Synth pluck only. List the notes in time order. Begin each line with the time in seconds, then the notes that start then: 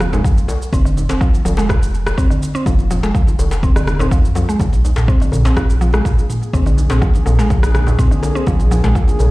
0.00 F3
0.13 G#3
0.24 F3
0.73 C4
0.85 D3
1.09 C4
1.21 F3
1.45 F3
1.58 G#3
1.69 F3
2.18 C4
2.30 D3
2.55 C4
2.66 F3
2.91 F3
3.03 G#3
3.14 F3
3.63 C4
3.76 D3
4.00 C4
4.12 F3
4.36 F3
4.49 G#3
4.60 F3
5.08 C4
5.21 D3
5.46 C4
5.57 F3
5.81 F3
5.94 G#3
6.05 F3
6.54 C4
6.66 D3
6.90 C4
7.02 F3
7.26 F3
7.39 G#3
7.50 F3
7.99 C4
8.11 D3
8.35 C4
8.47 F3
8.71 F3
8.84 G#3
8.95 F3